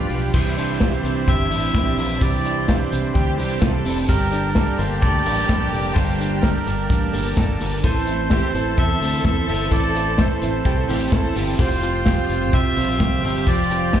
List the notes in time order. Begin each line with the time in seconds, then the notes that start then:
Already playing: F3 G3 D4 F4 G4 B4
0.10 B1 D4 F4 G4 B4, open hi-hat
0.33 C2 C3 E3 C4 D4 E4 G4 C5, kick, crash
0.57 C4 D4 G4, hi-hat pedal, open hi-hat
0.80 C3 E3 C4 D4 F4 G4, kick, snare, hi-hat pedal, open hi-hat
0.92 G4
1.03 C2 C4 D4 G4, hi-hat pedal, open hi-hat
1.27 G1 E3 C4 D4 G4 E5, kick, hi-hat pedal, open hi-hat
1.50 A1 C4 D4 G4, hi-hat pedal, open hi-hat
1.74 A#1 C3 E3 C4 D4 G4, kick, snare, hi-hat pedal, open hi-hat
1.97 A#1 C4 D4 G4 E5, hi-hat pedal, open hi-hat
2.20 C2 C3 E3 C4 D4 G4 D5, kick, hi-hat pedal, open hi-hat
2.44 C4 D4 G4, hi-hat pedal, open hi-hat
2.67 C3 E3 C4 D4 F4 G4 C5, kick, snare, hi-hat pedal, open hi-hat
2.80 G4
2.91 C2 C4 D4 G4, hi-hat pedal, open hi-hat
3.15 D2 E3 C4 D4 G4, kick, hi-hat pedal, open hi-hat
3.38 C2 C4 D4 G4, hi-hat pedal, open hi-hat
3.61 C2 C3 E3 C4 D4 F4 G4 A4, kick, snare, hi-hat pedal, open hi-hat
3.73 G4
3.85 F1 C4 D4 G4, hi-hat pedal, open hi-hat
4.08 G1 G3 A#3 D4 G4 A4 A#4 A5, kick, hi-hat pedal, open hi-hat
4.32 D4 A4, hi-hat pedal, open hi-hat
4.36 A#3
4.55 G3 A#3 D4 G4 A4, kick, snare, hi-hat pedal, open hi-hat
4.78 G1 D4 A4 C5, hi-hat pedal, open hi-hat
4.82 A#3
5.01 D2 G3 A#3 D4 D5, kick, hi-hat pedal, open hi-hat
5.06 A4
5.25 A1 D4 A4, hi-hat pedal, open hi-hat
5.29 A#3
5.49 A#1 G3 A#3 D4 A4, kick, snare, hi-hat pedal, open hi-hat
5.69 F1 A#3 A4 D5, hi-hat pedal
5.73 A#3 D4, open hi-hat
5.93 G1 G3 C5, kick, hi-hat pedal, open hi-hat
5.97 A#3 D4 A4
6.19 A#3 D4 A4, hi-hat pedal, open hi-hat
6.41 G3 A#3 D4 A4 A#4, kick, snare, hi-hat pedal, open hi-hat
6.66 G1 A#3 D4 A4, hi-hat pedal, open hi-hat
6.89 A1 G3 A#3 D4 A4, kick, hi-hat pedal, open hi-hat
7.13 G1 A#3 D4 A4, hi-hat pedal, open hi-hat
7.36 G1 G3 A#3 D4 A4, kick, snare, hi-hat pedal, open hi-hat
7.60 G1 A#3 D4 A4, hi-hat pedal, open hi-hat
7.83 A1 A2 E3 A3 C4 E4 A4 C5, kick, hi-hat pedal, open hi-hat
8.07 C4 E4, hi-hat pedal, open hi-hat
8.11 A3
8.30 A2 E3 A3 C4 G4, kick, snare, hi-hat pedal, open hi-hat
8.34 E4
8.44 A4
8.54 A1 C4 E4 A4, hi-hat pedal, open hi-hat
8.58 A3
8.78 E2 E3 A3 C4 E4 A4 E5, kick, hi-hat pedal, open hi-hat
9.01 D2 A3 C4 E4, hi-hat pedal, open hi-hat
9.25 E2 A2 E3 A3 C4 E4 A4 E5, kick, snare
9.48 G1 A3 C4 E4 E5, hi-hat pedal, open hi-hat
9.71 A1 A2 E3 A3 C4 E4 A4 D5, kick, hi-hat pedal, open hi-hat
9.94 A3 C4 E4, hi-hat pedal, open hi-hat
10.17 A2 E3 A3 C4 E4 A4 C5, kick, snare, hi-hat pedal, open hi-hat
10.41 A1 A3 C4 E4, hi-hat pedal, open hi-hat
10.65 C2 E3 A3 C4 G4 A4, kick, hi-hat pedal, open hi-hat
10.69 E4
10.77 A4
10.89 A1 A3 C4 E4 G4, hi-hat pedal, open hi-hat
11.12 A1 A2 E3 A3 C4 E4 A4, kick, snare, hi-hat pedal, open hi-hat
11.35 G1 A3 C4 E4 G4, hi-hat pedal, open hi-hat
11.58 F1 F3 G3 C4 F4 G4 C5, kick, hi-hat pedal, open hi-hat
11.82 G3 C4 F4, hi-hat pedal, open hi-hat
12.05 F3 G3 C4 F4 G4, kick, snare, hi-hat pedal, open hi-hat
12.29 F1 C4 F4, hi-hat pedal, open hi-hat
12.52 C2 F3 G3 C4 F4 G4 E5, kick, hi-hat pedal, open hi-hat
12.77 A#1 G3 C4 F4, hi-hat pedal, open hi-hat
12.98 C2 F3 G3 C4 F4 G4, kick, snare, hi-hat pedal, open hi-hat
13.23 G1 G3 C4 F4 E5, hi-hat pedal, open hi-hat
13.45 F1 F3 G3 C4 F4 D5, kick, hi-hat pedal, open hi-hat
13.50 G4
13.70 G3 C4 F4, hi-hat pedal, open hi-hat
13.93 F3 G3 C4 F4 G4 C5, kick, snare, hi-hat pedal, open hi-hat